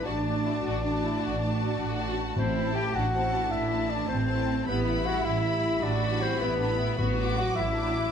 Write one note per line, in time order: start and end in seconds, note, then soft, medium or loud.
0.05 0.57 A1 medium
0.05 0.24 A3 soft
0.05 2.13 D4 medium
0.05 0.13 F#4 medium
0.05 0.24 F#4 soft
0.05 2.17 D5 medium
0.05 0.25 A5 soft
0.24 0.82 A3 soft
0.24 0.44 D4 soft
0.24 0.82 F#4 soft
0.24 0.82 A5 soft
0.45 0.52 E4 soft
0.63 1.15 A1 medium
0.63 0.83 F#4 medium
0.83 1.40 A3 soft
0.83 1.03 D4 soft
0.83 1.40 F#4 soft
0.83 1.40 A5 soft
1.03 1.22 E4 medium
1.22 1.73 A1 medium
1.22 1.41 F#4 medium
1.41 1.97 A3 soft
1.41 1.60 D4 medium
1.41 1.97 F#4 soft
1.41 1.96 A5 soft
1.61 2.37 F#4 medium
1.80 2.30 A1 medium
1.98 2.36 A3 soft
1.98 2.36 F#4 soft
1.98 2.35 A5 soft
2.36 2.87 A1 medium
2.36 2.90 A2 medium
2.36 2.72 C4 medium
2.36 2.93 E4 medium
2.36 2.73 C5 medium
2.54 3.12 A3 soft
2.54 3.12 E4 soft
2.54 3.11 A5 soft
2.75 2.93 G4 medium
2.75 2.97 G5 medium
2.94 3.45 A1 medium
2.94 3.14 D4 medium
2.94 3.51 F#4 medium
2.94 3.53 F#5 medium
3.13 3.69 A3 medium
3.13 3.33 C4 medium
3.13 3.69 E4 medium
3.13 3.70 A5 medium
3.34 4.10 D4 medium
3.51 4.02 A1 medium
3.51 3.89 E4 medium
3.51 3.91 E5 medium
3.71 4.27 A3 soft
3.71 4.27 E4 soft
3.71 4.26 A5 soft
3.90 4.09 D4 medium
3.90 4.08 D5 medium
4.08 4.60 A1 medium
4.08 4.66 C4 medium
4.08 4.67 C4 medium
4.08 4.65 C5 medium
4.28 4.66 A3 medium
4.28 4.66 E4 soft
4.28 4.66 A5 soft
4.66 5.18 A1 medium
4.66 4.86 G3 soft
4.66 5.05 B3 medium
4.66 5.83 E4 medium
4.66 4.85 E4 medium
4.66 5.08 B4 medium
4.66 4.84 B5 soft
4.85 5.44 G3 medium
4.85 5.43 E4 medium
4.85 5.43 B5 medium
5.06 5.25 F#4 medium
5.06 5.26 F#5 medium
5.25 5.76 A1 medium
5.25 5.82 E4 medium
5.25 5.84 E5 medium
5.44 6.02 G3 medium
5.44 6.02 E4 medium
5.44 6.00 B5 medium
5.83 6.35 A1 medium
5.83 6.22 D4 medium
5.83 6.41 F#4 medium
5.83 6.23 D5 medium
6.01 6.59 G3 soft
6.01 6.59 E4 soft
6.01 6.59 B5 medium
6.22 6.41 C4 medium
6.22 6.40 C5 medium
6.41 6.92 A1 medium
6.41 6.98 B3 medium
6.41 6.61 E4 medium
6.41 6.98 B4 medium
6.60 6.98 G3 soft
6.60 6.79 D4 medium
6.60 6.98 E4 medium
6.60 6.98 B5 soft
6.80 6.99 E4 medium
6.98 7.50 A1 medium
6.98 7.53 A2 medium
6.98 7.37 B3 medium
6.98 7.56 F#4 medium
6.98 7.37 B4 medium
7.17 7.75 F#3 medium
7.17 7.75 F#4 medium
7.17 7.75 D6 medium
7.38 7.57 F#4 medium
7.38 7.54 F#5 medium
7.55 8.09 A1 medium
7.55 7.76 E4 medium
7.55 8.12 E4 medium
7.55 8.12 E5 medium
7.76 8.12 F#3 medium
7.76 7.95 D4 medium
7.76 8.12 F#4 medium
7.76 8.12 D6 medium
7.96 8.12 E4 medium